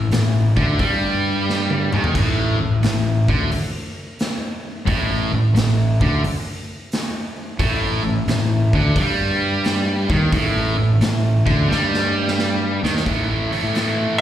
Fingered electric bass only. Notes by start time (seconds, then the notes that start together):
0.12 A1
0.56 D2
0.79 G2
1.93 D#2
2.15 A1
2.60 A1
2.83 A1
3.28 D2
3.51 muted fingered electric bass stroke
4.87 A1
5.34 A1
5.56 A1
6.01 D2
6.24 muted fingered electric bass stroke
7.59 A1
8.05 A1
8.28 A1
8.73 D2
8.96 G2
10.10 D#2
10.32 A1
10.78 A1
11.00 A1
11.46 D2
11.68 G2
12.83 D#2
13.06 A1
13.63 A2